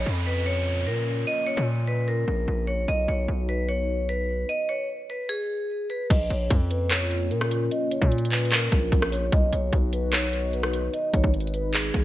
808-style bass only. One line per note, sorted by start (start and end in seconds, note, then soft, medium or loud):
0.06 0.88 F2 loud
0.87 1.25 A#2 loud
1.57 2.25 A#2 loud
2.28 2.47 A#1 loud
2.48 2.86 A#1 loud
2.88 3.07 B1 loud
3.08 3.28 B1 loud
3.28 4.45 B1 loud
6.10 6.30 A#1 loud
6.30 6.50 A#1 loud
6.50 7.33 F2 loud
7.31 7.69 A#2 loud
8.02 8.69 A#2 loud
8.72 8.91 A#1 loud
8.92 9.31 A#1 loud
9.32 9.52 B1 loud
9.53 9.72 B1 loud
9.73 10.89 B1 loud
11.14 11.23 G#1 loud
11.24 11.91 G#1 loud
11.94 12.04 G#1 loud